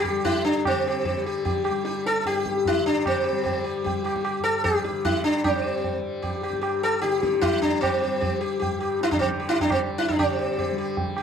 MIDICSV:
0, 0, Header, 1, 4, 480
1, 0, Start_track
1, 0, Tempo, 398936
1, 782, Time_signature, 3, 2, 24, 8
1, 7497, Tempo, 394218
1, 13580, End_track
2, 0, Start_track
2, 0, Title_t, "Sitar"
2, 0, Program_c, 0, 104
2, 48, Note_on_c, 0, 67, 37
2, 277, Note_off_c, 0, 67, 0
2, 293, Note_on_c, 0, 67, 44
2, 298, Note_on_c, 0, 64, 93
2, 520, Note_off_c, 0, 67, 0
2, 531, Note_off_c, 0, 64, 0
2, 536, Note_on_c, 0, 62, 86
2, 763, Note_off_c, 0, 62, 0
2, 804, Note_on_c, 0, 60, 73
2, 1049, Note_on_c, 0, 67, 36
2, 1254, Note_off_c, 0, 67, 0
2, 1268, Note_on_c, 0, 67, 38
2, 1469, Note_off_c, 0, 60, 0
2, 1491, Note_off_c, 0, 67, 0
2, 1520, Note_on_c, 0, 67, 40
2, 1729, Note_off_c, 0, 67, 0
2, 1743, Note_on_c, 0, 67, 39
2, 1962, Note_off_c, 0, 67, 0
2, 1976, Note_on_c, 0, 67, 36
2, 2205, Note_off_c, 0, 67, 0
2, 2224, Note_on_c, 0, 67, 37
2, 2450, Note_off_c, 0, 67, 0
2, 2485, Note_on_c, 0, 69, 83
2, 2722, Note_off_c, 0, 69, 0
2, 2727, Note_on_c, 0, 67, 89
2, 3213, Note_off_c, 0, 67, 0
2, 3217, Note_on_c, 0, 64, 87
2, 3437, Note_off_c, 0, 64, 0
2, 3441, Note_on_c, 0, 62, 77
2, 3683, Note_off_c, 0, 62, 0
2, 3692, Note_on_c, 0, 60, 68
2, 3895, Note_on_c, 0, 67, 36
2, 4118, Note_off_c, 0, 67, 0
2, 4133, Note_on_c, 0, 67, 33
2, 4353, Note_off_c, 0, 60, 0
2, 4364, Note_off_c, 0, 67, 0
2, 4380, Note_on_c, 0, 67, 36
2, 4608, Note_off_c, 0, 67, 0
2, 4625, Note_on_c, 0, 67, 37
2, 4850, Note_off_c, 0, 67, 0
2, 4863, Note_on_c, 0, 67, 36
2, 5089, Note_off_c, 0, 67, 0
2, 5106, Note_on_c, 0, 67, 39
2, 5330, Note_off_c, 0, 67, 0
2, 5337, Note_on_c, 0, 69, 86
2, 5577, Note_off_c, 0, 69, 0
2, 5582, Note_on_c, 0, 67, 88
2, 5812, Note_off_c, 0, 67, 0
2, 5826, Note_on_c, 0, 67, 36
2, 6049, Note_off_c, 0, 67, 0
2, 6073, Note_on_c, 0, 64, 83
2, 6299, Note_off_c, 0, 64, 0
2, 6304, Note_on_c, 0, 62, 75
2, 6543, Note_off_c, 0, 62, 0
2, 6548, Note_on_c, 0, 60, 69
2, 6781, Note_on_c, 0, 67, 34
2, 7004, Note_off_c, 0, 67, 0
2, 7214, Note_off_c, 0, 60, 0
2, 7488, Note_on_c, 0, 67, 39
2, 7718, Note_off_c, 0, 67, 0
2, 7746, Note_on_c, 0, 67, 38
2, 7949, Note_off_c, 0, 67, 0
2, 7964, Note_on_c, 0, 67, 36
2, 8196, Note_off_c, 0, 67, 0
2, 8231, Note_on_c, 0, 69, 90
2, 8447, Note_off_c, 0, 69, 0
2, 8452, Note_on_c, 0, 67, 91
2, 8688, Note_off_c, 0, 67, 0
2, 8703, Note_on_c, 0, 67, 38
2, 8927, Note_off_c, 0, 67, 0
2, 8938, Note_on_c, 0, 64, 93
2, 9180, Note_off_c, 0, 64, 0
2, 9185, Note_on_c, 0, 62, 88
2, 9409, Note_off_c, 0, 62, 0
2, 9417, Note_on_c, 0, 60, 74
2, 9671, Note_on_c, 0, 67, 32
2, 9892, Note_off_c, 0, 67, 0
2, 9908, Note_on_c, 0, 67, 39
2, 10094, Note_off_c, 0, 60, 0
2, 10131, Note_off_c, 0, 67, 0
2, 10147, Note_on_c, 0, 67, 37
2, 10361, Note_off_c, 0, 67, 0
2, 10376, Note_on_c, 0, 67, 42
2, 10604, Note_off_c, 0, 67, 0
2, 10629, Note_on_c, 0, 67, 36
2, 10851, Note_off_c, 0, 67, 0
2, 10906, Note_on_c, 0, 64, 100
2, 10999, Note_off_c, 0, 64, 0
2, 11004, Note_on_c, 0, 62, 73
2, 11096, Note_off_c, 0, 62, 0
2, 11101, Note_on_c, 0, 60, 69
2, 11215, Note_off_c, 0, 60, 0
2, 11351, Note_on_c, 0, 67, 34
2, 11463, Note_on_c, 0, 64, 96
2, 11572, Note_off_c, 0, 67, 0
2, 11576, Note_off_c, 0, 64, 0
2, 11613, Note_on_c, 0, 62, 81
2, 11722, Note_off_c, 0, 62, 0
2, 11742, Note_on_c, 0, 60, 58
2, 11837, Note_off_c, 0, 60, 0
2, 12065, Note_on_c, 0, 64, 87
2, 12183, Note_off_c, 0, 64, 0
2, 12188, Note_on_c, 0, 62, 76
2, 12309, Note_off_c, 0, 62, 0
2, 12309, Note_on_c, 0, 67, 33
2, 12318, Note_on_c, 0, 60, 70
2, 12529, Note_off_c, 0, 67, 0
2, 12557, Note_on_c, 0, 67, 35
2, 12773, Note_off_c, 0, 67, 0
2, 12799, Note_on_c, 0, 67, 39
2, 12980, Note_off_c, 0, 60, 0
2, 13013, Note_off_c, 0, 67, 0
2, 13037, Note_on_c, 0, 67, 33
2, 13252, Note_off_c, 0, 67, 0
2, 13520, Note_on_c, 0, 67, 33
2, 13580, Note_off_c, 0, 67, 0
2, 13580, End_track
3, 0, Start_track
3, 0, Title_t, "Tanpura"
3, 0, Program_c, 1, 104
3, 0, Note_on_c, 1, 43, 64
3, 0, Note_on_c, 1, 50, 62
3, 0, Note_on_c, 1, 55, 64
3, 144, Note_off_c, 1, 55, 0
3, 144, Note_on_c, 1, 55, 62
3, 776, Note_off_c, 1, 50, 0
3, 776, Note_on_c, 1, 50, 61
3, 1407, Note_off_c, 1, 55, 0
3, 1407, Note_on_c, 1, 55, 57
3, 2052, Note_off_c, 1, 55, 0
3, 2052, Note_on_c, 1, 55, 60
3, 2695, Note_off_c, 1, 43, 0
3, 2700, Note_on_c, 1, 43, 58
3, 3362, Note_off_c, 1, 50, 0
3, 3362, Note_on_c, 1, 50, 61
3, 3989, Note_off_c, 1, 55, 0
3, 3994, Note_on_c, 1, 55, 60
3, 4621, Note_off_c, 1, 55, 0
3, 4621, Note_on_c, 1, 55, 49
3, 5278, Note_off_c, 1, 43, 0
3, 5283, Note_on_c, 1, 43, 58
3, 5907, Note_off_c, 1, 50, 0
3, 5912, Note_on_c, 1, 50, 57
3, 6551, Note_off_c, 1, 55, 0
3, 6551, Note_on_c, 1, 55, 50
3, 7188, Note_off_c, 1, 55, 0
3, 7188, Note_on_c, 1, 55, 52
3, 7823, Note_off_c, 1, 43, 0
3, 7828, Note_on_c, 1, 43, 59
3, 8463, Note_off_c, 1, 50, 0
3, 8468, Note_on_c, 1, 50, 59
3, 9103, Note_off_c, 1, 55, 0
3, 9103, Note_on_c, 1, 55, 65
3, 9732, Note_off_c, 1, 55, 0
3, 9732, Note_on_c, 1, 55, 60
3, 10392, Note_off_c, 1, 43, 0
3, 10396, Note_on_c, 1, 43, 55
3, 11033, Note_off_c, 1, 50, 0
3, 11038, Note_on_c, 1, 50, 60
3, 11667, Note_off_c, 1, 55, 0
3, 11667, Note_on_c, 1, 55, 52
3, 12325, Note_off_c, 1, 50, 0
3, 12325, Note_on_c, 1, 50, 60
3, 12961, Note_off_c, 1, 55, 0
3, 12961, Note_on_c, 1, 55, 64
3, 13580, Note_off_c, 1, 43, 0
3, 13580, Note_off_c, 1, 50, 0
3, 13580, Note_off_c, 1, 55, 0
3, 13580, End_track
4, 0, Start_track
4, 0, Title_t, "Tabla"
4, 56, Note_on_c, 9, 64, 56
4, 176, Note_off_c, 9, 64, 0
4, 299, Note_on_c, 9, 63, 83
4, 299, Note_on_c, 9, 64, 71
4, 419, Note_off_c, 9, 63, 0
4, 419, Note_off_c, 9, 64, 0
4, 787, Note_on_c, 9, 60, 92
4, 787, Note_on_c, 9, 64, 77
4, 907, Note_off_c, 9, 60, 0
4, 907, Note_off_c, 9, 64, 0
4, 1265, Note_on_c, 9, 63, 68
4, 1265, Note_on_c, 9, 64, 71
4, 1386, Note_off_c, 9, 63, 0
4, 1386, Note_off_c, 9, 64, 0
4, 1751, Note_on_c, 9, 63, 76
4, 1751, Note_on_c, 9, 64, 69
4, 1872, Note_off_c, 9, 63, 0
4, 1872, Note_off_c, 9, 64, 0
4, 1985, Note_on_c, 9, 60, 66
4, 2105, Note_off_c, 9, 60, 0
4, 2225, Note_on_c, 9, 62, 66
4, 2345, Note_off_c, 9, 62, 0
4, 2479, Note_on_c, 9, 62, 57
4, 2599, Note_off_c, 9, 62, 0
4, 2716, Note_on_c, 9, 62, 72
4, 2834, Note_off_c, 9, 62, 0
4, 2834, Note_on_c, 9, 62, 60
4, 2954, Note_off_c, 9, 62, 0
4, 2958, Note_on_c, 9, 37, 67
4, 3078, Note_off_c, 9, 37, 0
4, 3080, Note_on_c, 9, 62, 55
4, 3193, Note_on_c, 9, 63, 73
4, 3193, Note_on_c, 9, 64, 75
4, 3200, Note_off_c, 9, 62, 0
4, 3313, Note_off_c, 9, 63, 0
4, 3313, Note_off_c, 9, 64, 0
4, 3679, Note_on_c, 9, 60, 91
4, 3679, Note_on_c, 9, 64, 75
4, 3799, Note_off_c, 9, 60, 0
4, 3799, Note_off_c, 9, 64, 0
4, 4161, Note_on_c, 9, 63, 74
4, 4161, Note_on_c, 9, 64, 62
4, 4281, Note_off_c, 9, 63, 0
4, 4281, Note_off_c, 9, 64, 0
4, 4647, Note_on_c, 9, 63, 69
4, 4647, Note_on_c, 9, 64, 70
4, 4768, Note_off_c, 9, 63, 0
4, 4768, Note_off_c, 9, 64, 0
4, 4884, Note_on_c, 9, 60, 62
4, 5004, Note_off_c, 9, 60, 0
4, 5004, Note_on_c, 9, 37, 49
4, 5111, Note_on_c, 9, 60, 66
4, 5124, Note_off_c, 9, 37, 0
4, 5231, Note_off_c, 9, 60, 0
4, 5593, Note_on_c, 9, 60, 74
4, 5593, Note_on_c, 9, 64, 62
4, 5714, Note_off_c, 9, 60, 0
4, 5714, Note_off_c, 9, 64, 0
4, 5832, Note_on_c, 9, 62, 67
4, 5953, Note_off_c, 9, 62, 0
4, 6078, Note_on_c, 9, 63, 79
4, 6078, Note_on_c, 9, 64, 70
4, 6198, Note_off_c, 9, 63, 0
4, 6198, Note_off_c, 9, 64, 0
4, 6550, Note_on_c, 9, 60, 89
4, 6550, Note_on_c, 9, 64, 84
4, 6670, Note_off_c, 9, 60, 0
4, 6670, Note_off_c, 9, 64, 0
4, 7029, Note_on_c, 9, 63, 74
4, 7029, Note_on_c, 9, 64, 58
4, 7150, Note_off_c, 9, 63, 0
4, 7150, Note_off_c, 9, 64, 0
4, 7503, Note_on_c, 9, 63, 77
4, 7503, Note_on_c, 9, 64, 66
4, 7625, Note_off_c, 9, 63, 0
4, 7625, Note_off_c, 9, 64, 0
4, 7744, Note_on_c, 9, 60, 61
4, 7865, Note_off_c, 9, 60, 0
4, 7865, Note_on_c, 9, 37, 49
4, 7982, Note_on_c, 9, 60, 72
4, 7986, Note_off_c, 9, 37, 0
4, 8104, Note_off_c, 9, 60, 0
4, 8469, Note_on_c, 9, 62, 69
4, 8588, Note_off_c, 9, 62, 0
4, 8588, Note_on_c, 9, 62, 55
4, 8710, Note_off_c, 9, 62, 0
4, 8715, Note_on_c, 9, 37, 65
4, 8837, Note_off_c, 9, 37, 0
4, 8843, Note_on_c, 9, 62, 59
4, 8949, Note_on_c, 9, 60, 76
4, 8949, Note_on_c, 9, 64, 71
4, 8964, Note_off_c, 9, 62, 0
4, 9071, Note_off_c, 9, 60, 0
4, 9071, Note_off_c, 9, 64, 0
4, 9203, Note_on_c, 9, 64, 56
4, 9324, Note_off_c, 9, 64, 0
4, 9445, Note_on_c, 9, 60, 94
4, 9445, Note_on_c, 9, 64, 80
4, 9567, Note_off_c, 9, 60, 0
4, 9567, Note_off_c, 9, 64, 0
4, 9924, Note_on_c, 9, 63, 73
4, 9924, Note_on_c, 9, 64, 68
4, 10046, Note_off_c, 9, 63, 0
4, 10046, Note_off_c, 9, 64, 0
4, 10408, Note_on_c, 9, 63, 81
4, 10408, Note_on_c, 9, 64, 69
4, 10530, Note_off_c, 9, 63, 0
4, 10530, Note_off_c, 9, 64, 0
4, 10644, Note_on_c, 9, 60, 58
4, 10766, Note_off_c, 9, 60, 0
4, 10881, Note_on_c, 9, 62, 60
4, 11002, Note_off_c, 9, 62, 0
4, 11014, Note_on_c, 9, 63, 64
4, 11014, Note_on_c, 9, 64, 61
4, 11131, Note_off_c, 9, 64, 0
4, 11131, Note_on_c, 9, 60, 89
4, 11131, Note_on_c, 9, 64, 80
4, 11135, Note_off_c, 9, 63, 0
4, 11252, Note_off_c, 9, 60, 0
4, 11252, Note_off_c, 9, 64, 0
4, 11495, Note_on_c, 9, 62, 72
4, 11606, Note_on_c, 9, 63, 84
4, 11606, Note_on_c, 9, 64, 77
4, 11616, Note_off_c, 9, 62, 0
4, 11726, Note_off_c, 9, 64, 0
4, 11726, Note_on_c, 9, 60, 83
4, 11726, Note_on_c, 9, 64, 91
4, 11728, Note_off_c, 9, 63, 0
4, 11848, Note_off_c, 9, 60, 0
4, 11848, Note_off_c, 9, 64, 0
4, 12076, Note_on_c, 9, 62, 78
4, 12197, Note_off_c, 9, 62, 0
4, 12199, Note_on_c, 9, 63, 60
4, 12199, Note_on_c, 9, 64, 57
4, 12321, Note_off_c, 9, 63, 0
4, 12321, Note_off_c, 9, 64, 0
4, 12322, Note_on_c, 9, 60, 82
4, 12322, Note_on_c, 9, 64, 78
4, 12444, Note_off_c, 9, 60, 0
4, 12444, Note_off_c, 9, 64, 0
4, 12801, Note_on_c, 9, 63, 69
4, 12801, Note_on_c, 9, 64, 58
4, 12923, Note_off_c, 9, 63, 0
4, 12923, Note_off_c, 9, 64, 0
4, 13269, Note_on_c, 9, 63, 80
4, 13269, Note_on_c, 9, 64, 62
4, 13391, Note_off_c, 9, 63, 0
4, 13391, Note_off_c, 9, 64, 0
4, 13505, Note_on_c, 9, 60, 63
4, 13580, Note_off_c, 9, 60, 0
4, 13580, End_track
0, 0, End_of_file